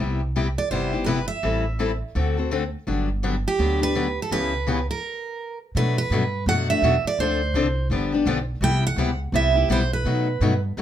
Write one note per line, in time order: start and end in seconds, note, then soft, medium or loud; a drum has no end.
0.00 0.56 C2 medium
0.00 0.20 C3 medium
0.00 0.20 G3 medium
0.00 0.20 B3 medium
0.00 0.20 E4 medium
0.00 0.20 G4 medium
0.36 0.46 C3 medium
0.36 0.46 G3 medium
0.36 0.47 B3 medium
0.36 0.47 E4 medium
0.36 0.47 G4 medium
0.58 0.71 D5 medium
0.71 1.28 G1 medium
0.71 0.92 C3 medium
0.71 0.92 G3 medium
0.71 0.92 B3 medium
0.71 0.93 E4 medium
0.71 0.92 G4 medium
0.71 1.04 C5 medium
0.93 1.06 B3 soft
0.93 1.07 E4 soft
0.93 1.06 G4 soft
1.04 1.18 C3 medium
1.04 1.18 G3 medium
1.04 1.18 B3 medium
1.04 1.19 E4 medium
1.04 1.19 G4 loud
1.04 1.07 A#4 medium
1.04 1.27 B4 medium
1.28 1.96 E5 medium
1.43 2.01 A1 medium
1.43 1.64 E3 medium
1.43 1.64 G3 medium
1.43 1.64 C4 medium
1.43 1.64 E4 medium
1.43 1.64 A4 medium
1.79 1.90 E3 medium
1.79 1.90 G3 medium
1.79 1.90 C4 medium
1.79 1.91 E4 medium
1.79 1.91 A4 medium
2.15 2.73 D2 medium
2.15 2.36 D3 medium
2.15 2.36 A3 medium
2.15 2.36 C4 medium
2.15 2.36 F#4 medium
2.15 2.36 A4 medium
2.37 2.51 C4 soft
2.37 2.51 F#4 soft
2.37 2.51 A4 soft
2.51 2.62 D3 medium
2.51 2.62 A3 medium
2.51 2.62 C4 medium
2.51 2.63 F#4 medium
2.51 2.63 A4 medium
2.87 3.45 G1 medium
2.87 3.08 D3 medium
2.87 3.08 F#3 medium
2.87 3.08 B3 medium
2.87 3.08 D4 medium
2.87 3.09 G4 medium
3.23 3.34 D3 medium
3.23 3.34 F#3 medium
3.23 3.34 B3 medium
3.23 3.35 D4 medium
3.23 3.35 G4 medium
3.48 3.80 G4 medium
3.59 4.17 D2 medium
3.59 3.80 D3 medium
3.59 3.80 F#3 medium
3.59 3.80 B3 medium
3.59 3.80 D4 medium
3.59 3.79 G4 medium
3.81 3.95 B3 soft
3.81 3.95 D4 medium
3.81 3.94 G4 soft
3.81 4.21 B4 loud
3.95 4.06 D3 medium
3.95 4.06 F#3 medium
3.95 4.07 B3 medium
3.95 4.07 D4 medium
3.95 4.07 G4 medium
4.22 4.32 A4 medium
4.31 4.89 C#2 medium
4.31 4.52 C#3 medium
4.31 4.52 E3 medium
4.31 4.52 B3 medium
4.31 4.53 C#4 medium
4.31 4.53 G4 medium
4.31 4.86 B4 loud
4.67 4.78 C#3 medium
4.67 4.78 E3 medium
4.67 4.78 B3 medium
4.67 4.79 C#4 medium
4.67 4.79 G4 medium
4.91 5.58 A#4 medium
5.75 6.10 B2 medium
5.75 5.96 B2 medium
5.75 5.96 F#3 medium
5.75 5.97 A3 medium
5.75 5.97 D4 medium
5.75 5.97 F#4 medium
5.75 5.97 B4 medium
5.98 6.44 B4 medium
6.10 6.45 G2 medium
6.10 6.22 B2 medium
6.10 6.22 F#3 medium
6.10 6.23 A3 medium
6.10 6.23 D4 medium
6.10 6.23 F#4 medium
6.46 6.81 F#2 medium
6.46 6.68 B2 medium
6.46 6.68 F#3 medium
6.46 6.68 A3 medium
6.46 6.69 D4 medium
6.46 6.69 F#4 medium
6.46 6.69 F#5 loud
6.70 6.83 A3 soft
6.70 6.83 D4 medium
6.70 6.83 F#4 medium
6.70 7.06 E5 loud
6.82 7.03 E2 medium
6.82 6.94 B2 medium
6.82 6.94 F#3 medium
6.82 6.94 A3 loud
6.82 6.95 D4 loud
6.82 6.95 F#4 medium
7.04 7.19 D5 medium
7.04 muted upright bass stroke soft
7.19 7.53 D2 medium
7.19 7.40 D3 medium
7.19 7.40 F3 medium
7.19 7.40 C4 medium
7.19 7.41 D4 medium
7.19 7.41 A4 medium
7.19 7.87 C5 medium
7.54 7.89 C2 medium
7.54 7.66 D3 medium
7.54 7.66 F3 medium
7.54 7.66 C4 medium
7.54 7.66 D4 medium
7.54 7.66 A4 medium
7.90 8.25 G1 medium
7.90 8.11 D3 medium
7.90 8.12 F3 medium
7.90 8.12 B3 medium
7.90 8.12 D4 medium
7.90 8.11 G4 medium
8.12 8.26 B3 soft
8.12 8.26 D4 medium
8.12 8.26 G4 medium
8.26 8.60 B1 medium
8.26 8.37 D3 medium
8.26 8.38 F3 loud
8.26 8.38 B3 loud
8.26 8.38 D4 loud
8.26 8.38 G4 loud
8.61 8.96 C2 medium
8.61 8.83 C3 medium
8.61 8.83 G3 medium
8.61 8.83 B3 medium
8.61 8.83 E4 medium
8.61 8.84 G4 medium
8.61 8.83 G5 loud
8.87 9.19 F#5 loud
8.96 9.32 C#2 medium
8.96 9.09 C3 medium
8.96 9.09 G3 medium
8.96 9.09 B3 medium
8.96 9.09 E4 loud
8.96 9.10 G4 medium
9.32 9.68 C2 medium
9.32 9.55 C3 medium
9.32 9.55 G3 medium
9.32 9.55 B3 medium
9.32 9.55 E4 medium
9.32 9.54 G4 medium
9.32 9.68 E5 medium
9.55 9.69 B3 medium
9.55 9.70 E4 medium
9.55 9.69 G4 medium
9.69 10.04 B1 medium
9.69 9.81 C3 medium
9.69 9.81 G3 medium
9.69 9.81 B3 medium
9.69 9.81 E4 loud
9.69 9.81 G4 loud
9.69 9.93 C5 medium
9.93 10.60 B4 medium
10.05 10.40 B2 medium
10.05 10.26 B2 medium
10.05 10.26 F#3 medium
10.05 10.27 A3 medium
10.05 10.27 D#4 medium
10.05 10.27 F#4 medium
10.41 10.76 G2 medium
10.41 10.52 B2 medium
10.41 10.53 F#3 medium
10.41 10.53 A3 medium
10.41 10.53 D#4 medium
10.41 10.53 F#4 medium
10.77 10.82 A2 medium
10.77 10.82 B2 medium
10.77 10.82 F#3 medium
10.77 10.82 A3 medium
10.77 10.82 D#4 medium